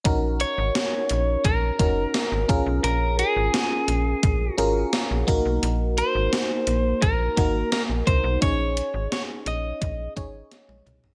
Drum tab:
HH |x-x-x-x-x-x-x-x-|x-x-x-x-x-x-x-x-|x-x-x-x-x-x-x-x-|x-x-x-x-x-x-x-x-|
SD |----o-------o---|----o-------o---|----o-------o---|----o-------o---|
T1 |----------------|----------------|----------------|-------------o--|
T2 |----------------|----------------|----------------|--------------o-|
FT |----------------|----------------|----------------|---------------o|
BD |o-------o-o---o-|--------o-----o-|--------o-o---o-|o-------o-o-----|